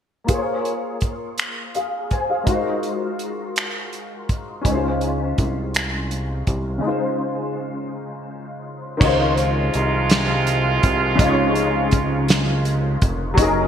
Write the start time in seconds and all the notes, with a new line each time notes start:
0.24 A#3 F4
0.28 G#4 C5, kick, closed hi-hat
0.34 C#5
0.65 closed hi-hat
1.01 kick, closed hi-hat
1.38 finger snap, closed hi-hat
1.75 G#4 F5, closed hi-hat
2.11 C5 G#5, kick, closed hi-hat
2.30 G#4 F5
2.43 G#3 D#4, kick, closed hi-hat
2.47 F4 F#4 A#4
2.53 C5
2.83 closed hi-hat
3.19 closed hi-hat
3.56 finger snap, closed hi-hat
3.93 closed hi-hat
4.29 kick, closed hi-hat
4.61 G#3 C#4, kick, closed hi-hat
4.66 C#2 D#4 E4
4.72 F4 C5
5.01 closed hi-hat
5.38 C2, kick, closed hi-hat
5.74 finger snap, closed hi-hat
6.11 closed hi-hat
6.47 C2, kick, closed hi-hat
6.78 C#3 G#3
6.83 D#4 F4
6.88 C5
8.97 C3 D#3 F3 G#3 F4 C#5, kick
9.01 C#2 D#4 F4, crash
9.07 C5
9.37 closed hi-hat
9.74 C2, closed hi-hat
10.10 snare, closed hi-hat
10.47 closed hi-hat
10.83 C2, kick, closed hi-hat
11.15 C#3 G#3, kick, closed hi-hat
11.20 C#2 D#4 F4
11.25 C#5
11.55 closed hi-hat
11.91 kick, closed hi-hat
12.28 snare, closed hi-hat
12.65 closed hi-hat
13.02 F1, kick, closed hi-hat
13.34 F#3 C#4, kick
13.38 F#1 D#4 G#4, closed hi-hat
13.43 A#4